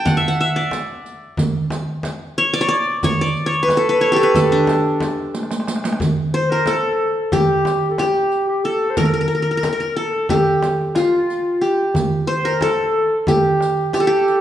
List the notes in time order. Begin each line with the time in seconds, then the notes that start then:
Already playing: G5 A5
0.05 F#5, riq, darbuka dum, frame drum
0.17 E5
0.28 F#5
0.39 E5, darbuka ka
0.56 D5
0.71 riq, darbuka tek, frame drum
1.06 riq
1.37 riq, frame drum, darbuka dum
1.70 riq, darbuka tek, frame drum
2.03 riq, darbuka tek, frame drum
2.38 C#5, riq
2.54 D5
2.61 C#5
2.69 D5
3.03 C#5, riq, frame drum, darbuka dum
3.21 D5
3.37 riq, darbuka ka
3.46 C#5
3.63 B4
3.69 riq, darbuka tek, frame drum
3.77 A4
3.89 B4
4.01 C#5, riq
4.12 G4 A4
4.16 A4
4.23 B4
4.35 A4, riq, frame drum, darbuka dum
4.52 D4
4.67 riq, darbuka tek, frame drum
5.01 riq, darbuka tek, frame drum
5.35 riq, darbuka tek
5.43 darbuka ka
5.51 riq, darbuka tek
5.60 darbuka ka
5.68 riq, darbuka tek
5.76 darbuka ka
5.84 riq, darbuka tek
5.92 darbuka ka
6.00 riq, frame drum, darbuka dum
6.34 C5, riq, darbuka ka
6.50 A#4
6.66 A4, riq, darbuka tek, frame drum
7.32 G4, riq, frame drum, darbuka dum
7.65 riq, darbuka tek, frame drum
7.90 A4
7.98 G4, riq, darbuka tek, frame drum
8.31 riq, darbuka ka
8.49 G4
8.64 A4, riq, darbuka ka
8.90 C5
8.97 A#4, riq, frame drum, darbuka dum
9.05 A#4
9.14 A#4
9.21 A#4
9.28 A#4, riq
9.35 A#4
9.42 A#4
9.51 A#4
9.57 A#4
9.63 A#4, riq, darbuka tek, frame drum
9.73 A#4
9.80 A#4
9.96 A4
10.29 G4, riq, frame drum, darbuka dum
10.62 riq, darbuka tek, frame drum
10.95 F4, riq, darbuka tek, frame drum
11.29 riq, darbuka ka
11.61 G4, riq, darbuka ka
11.94 riq, darbuka dum, frame drum
12.27 C5, riq
12.45 A#4
12.61 A4, riq, darbuka tek, frame drum
13.27 G4, riq, frame drum, darbuka dum
13.61 riq, darbuka tek
13.93 G4, riq, darbuka tek, frame drum
14.00 A4
14.07 G4
14.28 riq, darbuka ka